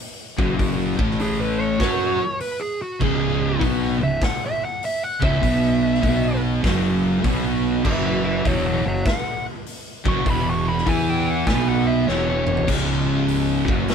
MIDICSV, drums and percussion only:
0, 0, Header, 1, 2, 480
1, 0, Start_track
1, 0, Tempo, 604230
1, 465, Time_signature, 4, 2, 24, 8
1, 11081, End_track
2, 0, Start_track
2, 0, Title_t, "Drums"
2, 306, Note_on_c, 9, 36, 121
2, 386, Note_off_c, 9, 36, 0
2, 472, Note_on_c, 9, 36, 103
2, 473, Note_on_c, 9, 46, 55
2, 551, Note_off_c, 9, 36, 0
2, 552, Note_off_c, 9, 46, 0
2, 786, Note_on_c, 9, 36, 115
2, 865, Note_off_c, 9, 36, 0
2, 883, Note_on_c, 9, 38, 33
2, 950, Note_on_c, 9, 46, 50
2, 962, Note_off_c, 9, 38, 0
2, 1029, Note_off_c, 9, 46, 0
2, 1427, Note_on_c, 9, 46, 60
2, 1430, Note_on_c, 9, 36, 106
2, 1440, Note_on_c, 9, 38, 112
2, 1507, Note_off_c, 9, 46, 0
2, 1509, Note_off_c, 9, 36, 0
2, 1520, Note_off_c, 9, 38, 0
2, 1909, Note_on_c, 9, 46, 58
2, 1988, Note_off_c, 9, 46, 0
2, 2390, Note_on_c, 9, 36, 103
2, 2397, Note_on_c, 9, 49, 86
2, 2470, Note_off_c, 9, 36, 0
2, 2476, Note_off_c, 9, 49, 0
2, 2870, Note_on_c, 9, 36, 97
2, 2874, Note_on_c, 9, 46, 55
2, 2950, Note_off_c, 9, 36, 0
2, 2953, Note_off_c, 9, 46, 0
2, 3347, Note_on_c, 9, 46, 63
2, 3349, Note_on_c, 9, 36, 108
2, 3359, Note_on_c, 9, 38, 120
2, 3426, Note_off_c, 9, 46, 0
2, 3429, Note_off_c, 9, 36, 0
2, 3439, Note_off_c, 9, 38, 0
2, 3834, Note_on_c, 9, 46, 68
2, 3913, Note_off_c, 9, 46, 0
2, 4148, Note_on_c, 9, 36, 123
2, 4227, Note_off_c, 9, 36, 0
2, 4313, Note_on_c, 9, 36, 99
2, 4317, Note_on_c, 9, 46, 61
2, 4392, Note_off_c, 9, 36, 0
2, 4397, Note_off_c, 9, 46, 0
2, 4724, Note_on_c, 9, 38, 29
2, 4790, Note_on_c, 9, 46, 62
2, 4792, Note_on_c, 9, 36, 101
2, 4803, Note_off_c, 9, 38, 0
2, 4870, Note_off_c, 9, 46, 0
2, 4872, Note_off_c, 9, 36, 0
2, 5274, Note_on_c, 9, 36, 117
2, 5275, Note_on_c, 9, 46, 65
2, 5288, Note_on_c, 9, 38, 117
2, 5354, Note_off_c, 9, 36, 0
2, 5355, Note_off_c, 9, 46, 0
2, 5367, Note_off_c, 9, 38, 0
2, 5754, Note_on_c, 9, 36, 107
2, 5755, Note_on_c, 9, 46, 62
2, 5834, Note_off_c, 9, 36, 0
2, 5834, Note_off_c, 9, 46, 0
2, 6235, Note_on_c, 9, 36, 108
2, 6235, Note_on_c, 9, 49, 106
2, 6314, Note_off_c, 9, 36, 0
2, 6314, Note_off_c, 9, 49, 0
2, 6716, Note_on_c, 9, 36, 110
2, 6719, Note_on_c, 9, 46, 54
2, 6795, Note_off_c, 9, 36, 0
2, 6798, Note_off_c, 9, 46, 0
2, 7194, Note_on_c, 9, 36, 116
2, 7197, Note_on_c, 9, 46, 54
2, 7209, Note_on_c, 9, 38, 113
2, 7274, Note_off_c, 9, 36, 0
2, 7276, Note_off_c, 9, 46, 0
2, 7289, Note_off_c, 9, 38, 0
2, 7677, Note_on_c, 9, 46, 62
2, 7757, Note_off_c, 9, 46, 0
2, 7988, Note_on_c, 9, 36, 127
2, 8067, Note_off_c, 9, 36, 0
2, 8151, Note_on_c, 9, 36, 106
2, 8154, Note_on_c, 9, 46, 61
2, 8230, Note_off_c, 9, 36, 0
2, 8234, Note_off_c, 9, 46, 0
2, 8563, Note_on_c, 9, 38, 32
2, 8633, Note_on_c, 9, 36, 102
2, 8638, Note_on_c, 9, 46, 67
2, 8643, Note_off_c, 9, 38, 0
2, 8713, Note_off_c, 9, 36, 0
2, 8718, Note_off_c, 9, 46, 0
2, 9112, Note_on_c, 9, 36, 115
2, 9112, Note_on_c, 9, 46, 62
2, 9125, Note_on_c, 9, 38, 124
2, 9191, Note_off_c, 9, 36, 0
2, 9191, Note_off_c, 9, 46, 0
2, 9204, Note_off_c, 9, 38, 0
2, 9602, Note_on_c, 9, 38, 72
2, 9681, Note_off_c, 9, 38, 0
2, 9903, Note_on_c, 9, 45, 111
2, 9983, Note_off_c, 9, 45, 0
2, 9987, Note_on_c, 9, 43, 94
2, 10066, Note_off_c, 9, 43, 0
2, 10074, Note_on_c, 9, 36, 108
2, 10074, Note_on_c, 9, 57, 124
2, 10153, Note_off_c, 9, 57, 0
2, 10154, Note_off_c, 9, 36, 0
2, 10552, Note_on_c, 9, 46, 55
2, 10631, Note_off_c, 9, 46, 0
2, 10870, Note_on_c, 9, 36, 112
2, 10949, Note_off_c, 9, 36, 0
2, 11028, Note_on_c, 9, 46, 62
2, 11040, Note_on_c, 9, 38, 110
2, 11081, Note_off_c, 9, 38, 0
2, 11081, Note_off_c, 9, 46, 0
2, 11081, End_track
0, 0, End_of_file